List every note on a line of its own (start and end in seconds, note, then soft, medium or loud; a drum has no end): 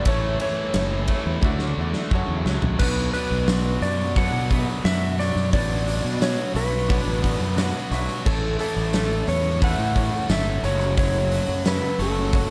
0.05 0.37 A1 medium
0.05 1.07 A2 medium
0.05 1.41 A2 medium
0.05 1.07 E3 loud
0.05 1.41 E3 loud
0.05 1.42 A3 loud
0.05 1.07 A3 loud
0.05 1.42 C#4 loud
0.05 0.33 E4 loud
0.05 1.43 E4 loud
0.05 0.34 A4 medium
0.05 0.34 C#5 loud
0.05 0.40 C#5 medium
0.05 kick loud
0.05 ride medium
0.40 0.68 E4 medium
0.40 0.68 A4 medium
0.40 0.69 B4 medium
0.40 1.74 C#5 medium
0.40 ride medium
0.74 1.05 F#1 medium
0.74 1.02 E4 medium
0.74 1.03 A4 medium
0.74 1.03 C#5 medium
0.74 snare loud
0.74 ride medium
1.08 1.41 A2 medium
1.08 1.42 E3 medium
1.08 1.41 A3 medium
1.08 1.36 E4 medium
1.08 1.37 A4 medium
1.08 1.37 C#5 medium
1.08 kick medium
1.08 ride medium
1.26 1.41 E2 medium
1.42 1.74 D2 loud
1.42 2.09 D3 medium
1.42 2.10 A3 medium
1.42 2.10 D4 medium
1.42 1.71 E4 loud
1.42 1.72 F#4 loud
1.42 2.11 F#4 medium
1.42 kick loud
1.42 high tom medium
1.46 1.72 D5 loud
1.59 snare medium
1.78 1.93 E2 medium
1.78 2.06 E4 medium
1.78 2.06 F#4 medium
1.78 2.07 D5 loud
1.94 snare medium
2.10 2.77 F#2 medium
2.10 2.78 F#2 medium
2.10 2.27 F#2 medium
2.10 2.78 C#3 medium
2.10 2.78 F#3 loud
2.10 2.79 F#3 medium
2.10 2.79 A3 medium
2.10 2.79 C#4 medium
2.10 2.40 F#4 loud
2.10 kick medium
2.14 2.79 F#4 loud
2.14 2.41 A4 loud
2.14 2.41 C#5 loud
2.28 2.44 E2 medium
2.46 2.61 C#2 medium
2.46 2.74 F#4 medium
2.46 2.75 A4 medium
2.46 2.75 C#5 medium
2.46 snare medium
2.62 2.78 B1 medium
2.62 floor tom medium
2.79 3.11 B1 loud
2.79 4.15 B2 medium
2.79 4.50 B2 medium
2.79 4.17 F#3 loud
2.79 5.51 B3 medium
2.79 4.18 B3 medium
2.79 5.51 D4 medium
2.79 3.08 D4 medium
2.79 5.51 F#4 medium
2.79 3.09 F#4 medium
2.79 3.12 B4 medium
2.79 5.51 B4 medium
2.79 3.09 B4 medium
2.79 3.09 C#5 loud
2.79 kick loud
2.79 crash loud
2.79 tambourine soft
3.13 4.15 D4 medium
3.13 3.42 D4 medium
3.13 3.42 F#4 medium
3.13 3.84 B4 medium
3.13 3.42 B4 medium
3.13 3.43 D5 medium
3.13 open hi-hat medium
3.13 tambourine medium
3.30 3.77 B1 medium
3.30 tambourine soft
3.47 3.76 D4 medium
3.47 4.83 F#4 medium
3.47 3.76 F#4 medium
3.47 3.77 B4 medium
3.47 snare loud
3.47 open hi-hat medium
3.47 tambourine medium
3.51 3.77 D5 medium
3.82 4.28 F#2 medium
3.82 4.11 D4 medium
3.82 4.11 F#4 medium
3.82 4.11 B4 medium
3.82 5.18 C#5 medium
3.82 4.18 D5 loud
3.82 open hi-hat medium
3.82 tambourine medium
3.86 4.12 D5 medium
4.16 5.51 B2 medium
4.16 5.52 F#3 medium
4.16 5.52 B3 medium
4.16 4.44 D4 loud
4.16 5.85 D4 medium
4.16 4.44 F#4 medium
4.16 4.45 B4 medium
4.16 4.45 C#5 loud
4.16 4.87 F#5 loud
4.16 kick loud
4.16 open hi-hat medium
4.32 4.64 B2 medium
4.50 6.21 B3 medium
4.50 4.79 D4 medium
4.50 4.79 F#4 medium
4.50 4.79 B4 medium
4.50 kick medium
4.50 open hi-hat medium
4.54 4.80 E5 medium
4.70 tambourine soft
4.84 5.31 F#2 medium
4.84 5.13 D4 medium
4.84 6.19 F#4 medium
4.84 5.13 F#4 medium
4.84 5.13 B4 medium
4.84 5.13 D5 medium
4.84 5.19 E5 loud
4.84 snare loud
4.84 open hi-hat medium
4.84 tambourine loud
5.18 5.47 D4 medium
5.18 5.47 F#4 medium
5.18 5.47 B4 medium
5.18 6.53 C#5 medium
5.18 5.48 C#5 medium
5.18 5.52 D5 medium
5.18 snare soft
5.18 open hi-hat medium
5.18 tambourine medium
5.36 5.51 F#2 medium
5.36 tambourine medium
5.52 5.99 A1 medium
5.52 7.23 B2 medium
5.52 6.87 B2 medium
5.52 6.88 F#3 loud
5.52 8.23 B3 medium
5.52 6.88 B3 medium
5.52 5.80 D4 loud
5.52 8.23 D4 medium
5.52 5.80 F#4 medium
5.52 8.23 F#4 medium
5.52 8.23 B4 loud
5.52 5.81 B4 medium
5.52 5.81 C#5 loud
5.52 6.22 D5 loud
5.52 kick loud
5.52 open hi-hat medium
5.52 tambourine soft
5.86 6.87 D4 medium
5.86 6.14 D4 medium
5.86 6.14 F#4 medium
5.86 6.15 B4 medium
5.86 6.15 C#5 medium
5.86 open hi-hat medium
5.86 tambourine medium
6.04 6.35 B2 medium
6.04 tambourine soft
6.20 6.48 D4 medium
6.20 7.56 F#4 medium
6.20 6.49 F#4 medium
6.20 6.49 B4 medium
6.20 6.49 C#5 medium
6.20 6.56 C#5 medium
6.20 snare loud
6.20 open hi-hat medium
6.20 tambourine loud
6.54 7.01 B1 medium
6.54 6.82 D4 medium
6.54 6.82 F#4 medium
6.54 6.83 B4 medium
6.54 7.88 B4 medium
6.54 7.90 C#5 medium
6.54 6.83 E5 medium
6.54 open hi-hat medium
6.54 tambourine medium
6.88 8.23 B2 medium
6.88 8.24 F#3 medium
6.88 8.25 D4 medium
6.88 7.16 D4 loud
6.88 7.16 F#4 medium
6.88 7.17 B4 medium
6.88 7.17 C#5 loud
6.88 kick loud
6.88 open hi-hat medium
6.92 8.25 B3 medium
7.06 7.37 A1 medium
7.22 8.25 B3 medium
7.22 7.50 D4 medium
7.22 7.51 F#4 medium
7.22 7.51 B4 medium
7.22 7.51 D5 medium
7.22 kick medium
7.22 open hi-hat medium
7.40 7.71 F#2 medium
7.40 tambourine soft
7.56 7.84 D4 medium
7.56 8.25 F#4 medium
7.56 7.85 F#4 medium
7.56 7.85 B4 medium
7.56 7.85 C#5 medium
7.56 snare loud
7.56 open hi-hat medium
7.56 tambourine loud
7.90 8.07 B1 medium
7.90 8.19 D4 medium
7.90 8.19 F#4 medium
7.90 8.19 B4 medium
7.90 9.27 C#5 medium
7.90 8.20 E5 medium
7.90 snare soft
7.90 open hi-hat medium
7.90 tambourine medium
8.09 tambourine medium
8.25 8.56 A1 loud
8.25 9.60 A2 medium
8.25 9.60 E3 loud
8.25 10.61 A3 medium
8.25 9.95 A3 medium
8.25 9.64 A3 loud
8.25 10.61 C#4 medium
8.25 8.53 C#4 medium
8.25 10.61 E4 medium
8.25 8.53 E4 medium
8.25 8.59 A4 medium
8.25 8.53 A4 medium
8.25 10.61 C#5 medium
8.25 8.53 C#5 loud
8.25 kick loud
8.25 crash medium
8.58 8.86 C#4 medium
8.58 8.86 E4 medium
8.58 9.60 E4 medium
8.58 8.87 A4 medium
8.58 9.30 A4 medium
8.58 8.87 E5 medium
8.58 open hi-hat medium
8.58 tambourine medium
8.76 9.22 A1 loud
8.76 tambourine soft
8.91 9.20 C#4 medium
8.91 9.20 E4 medium
8.91 9.21 A4 medium
8.91 10.27 A4 medium
8.91 9.21 E5 medium
8.91 snare loud
8.91 open hi-hat medium
8.91 tambourine loud
9.27 9.73 E2 loud
9.27 9.55 C#4 medium
9.27 9.55 E4 medium
9.27 9.55 A4 medium
9.27 9.55 B4 medium
9.27 12.00 C#5 medium
9.27 9.60 C#5 loud
9.27 open hi-hat medium
9.27 tambourine medium
9.60 10.61 A2 medium
9.60 10.62 E3 medium
9.60 10.63 A3 medium
9.60 9.88 C#4 loud
9.60 10.63 E4 medium
9.60 9.88 E4 medium
9.60 9.88 A4 loud
9.60 9.89 B4 loud
9.60 10.33 F#5 loud
9.60 kick loud
9.60 open hi-hat medium
9.78 10.09 A2 medium
9.95 10.22 C#4 medium
9.95 12.50 C#4 medium
9.95 10.22 E4 medium
9.95 10.23 A4 medium
9.95 10.23 C#5 medium
9.95 kick medium
9.95 open hi-hat medium
10.14 tambourine soft
10.28 10.60 G1 loud
10.28 10.56 C#4 medium
10.28 10.56 E4 medium
10.28 10.63 A4 medium
10.28 10.57 A4 medium
10.28 10.57 C#5 medium
10.28 10.62 E5 medium
10.28 snare loud
10.28 open hi-hat medium
10.28 tambourine medium
10.62 11.39 F#1 loud
10.62 11.97 F#2 medium
10.62 11.97 C#3 medium
10.62 10.98 F#3 medium
10.62 11.99 F#3 medium
10.62 12.50 A3 medium
10.62 11.17 C#4 medium
10.62 12.50 C#4 medium
10.62 11.17 F#4 medium
10.62 12.50 F#4 medium
10.62 11.18 A4 medium
10.62 11.18 C#5 medium
10.62 12.50 C#5 medium
10.62 10.97 C#5 medium
10.62 snare soft
10.62 open hi-hat medium
10.62 tambourine medium
10.81 tambourine medium
10.97 12.50 F#3 medium
10.97 11.62 C#5 medium
10.97 kick loud
10.97 open hi-hat medium
10.97 tambourine soft
11.16 tambourine soft
11.30 11.58 C#4 medium
11.30 11.58 F#4 medium
11.30 12.32 F#4 medium
11.30 11.59 A4 medium
11.30 11.59 E5 medium
11.30 open hi-hat medium
11.30 tambourine medium
11.48 11.79 F#2 medium
11.48 tambourine soft
11.64 11.92 C#4 medium
11.64 11.92 F#4 medium
11.64 11.92 A4 medium
11.64 12.50 A4 medium
11.64 12.01 B4 medium
11.64 11.93 C#5 medium
11.64 snare loud
11.64 open hi-hat medium
11.64 tambourine medium
11.98 12.45 F#1 medium
11.98 12.50 C#3 medium
11.98 12.50 F#3 medium
11.98 12.25 C#4 medium
11.98 12.26 F#4 medium
11.98 12.26 A4 medium
11.98 12.50 C#5 medium
11.98 12.27 C#5 medium
11.98 open hi-hat medium
12.02 12.50 F#2 medium
12.02 12.50 A4 medium
12.17 tambourine soft
12.33 12.50 C#4 loud
12.33 12.50 F#4 medium
12.33 12.50 A4 medium
12.33 12.50 C#5 loud
12.33 kick loud
12.33 open hi-hat medium
12.33 tambourine soft